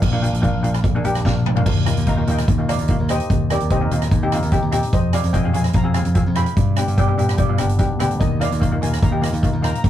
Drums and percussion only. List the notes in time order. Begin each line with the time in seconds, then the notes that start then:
0.02 kick, crash
0.14 high conga
0.24 closed hi-hat
0.34 closed hi-hat
0.43 kick, closed hi-hat
0.64 closed hi-hat, low conga
0.74 cross-stick, closed hi-hat
0.84 kick, closed hi-hat
1.04 closed hi-hat, low conga
1.15 cross-stick, closed hi-hat, high conga
1.25 kick, snare
1.46 mid tom
1.57 floor tom
1.66 kick, crash
1.86 cross-stick, closed hi-hat
1.97 closed hi-hat
2.07 kick, closed hi-hat
2.18 high conga
2.27 closed hi-hat, low conga
2.38 cross-stick, closed hi-hat
2.48 kick, closed hi-hat
2.68 cross-stick, closed hi-hat, high conga
2.79 closed hi-hat
2.88 kick, closed hi-hat
2.99 high conga
3.08 cross-stick, closed hi-hat, low conga
3.20 closed hi-hat
3.30 kick, closed hi-hat
3.50 cross-stick, closed hi-hat
3.60 closed hi-hat
3.70 kick, closed hi-hat
3.80 high conga
3.90 closed hi-hat, low conga
4.02 cross-stick, closed hi-hat
4.11 kick, closed hi-hat
4.32 cross-stick, closed hi-hat, high conga
4.43 closed hi-hat
4.52 kick, closed hi-hat
4.64 high conga
4.72 cross-stick, closed hi-hat, low conga
4.83 closed hi-hat
4.93 kick, closed hi-hat
5.13 cross-stick, closed hi-hat
5.24 closed hi-hat
5.34 kick, closed hi-hat
5.45 high conga
5.53 closed hi-hat, low conga
5.64 cross-stick, closed hi-hat
5.73 kick, closed hi-hat
5.94 cross-stick, closed hi-hat, high conga
6.05 closed hi-hat
6.15 kick, closed hi-hat
6.26 high conga
6.35 cross-stick, closed hi-hat, low conga
6.46 closed hi-hat
6.57 kick, closed hi-hat
6.76 cross-stick, closed hi-hat, high conga
6.88 closed hi-hat
6.98 kick, closed hi-hat
7.09 high conga
7.18 closed hi-hat, low conga
7.29 cross-stick, closed hi-hat, high conga
7.38 kick, closed hi-hat
7.58 cross-stick, closed hi-hat, high conga
7.69 closed hi-hat, high conga
7.79 kick, closed hi-hat, high conga
7.91 high conga
8.00 cross-stick, closed hi-hat, low conga
8.11 closed hi-hat, low conga
8.21 kick, closed hi-hat
8.41 cross-stick, closed hi-hat
8.52 closed hi-hat
8.62 kick, closed hi-hat
8.72 high conga
8.82 closed hi-hat, low conga
8.93 cross-stick, closed hi-hat
9.02 kick, closed hi-hat
9.22 cross-stick, closed hi-hat, high conga
9.34 closed hi-hat
9.43 kick, closed hi-hat
9.53 high conga
9.63 cross-stick, closed hi-hat, low conga
9.75 closed hi-hat
9.84 kick, closed hi-hat